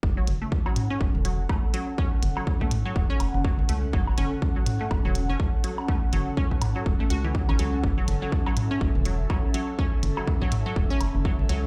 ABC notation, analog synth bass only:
X:1
M:4/4
L:1/16
Q:"Swing 16ths" 1/4=123
K:F#m
V:1 name="Analog synth bass" clef=bass
F,,, z F,,, z4 z F,,, E,,,2 F,,, z4 | z2 F,,, z4 z E,,, z F,,, F,,,2 z C,, z | F,,, z F,,, z4 z F,,, E,,,2 F,,, z4 | z2 F,,, z4 z E,,, z C,,2 z A,,, C,, z |
F,,, z F,,, z4 z F,,, E,,,2 F,,, z4 | z2 F,,, z4 z E,,, z F,,, F,,,2 z C,, z |]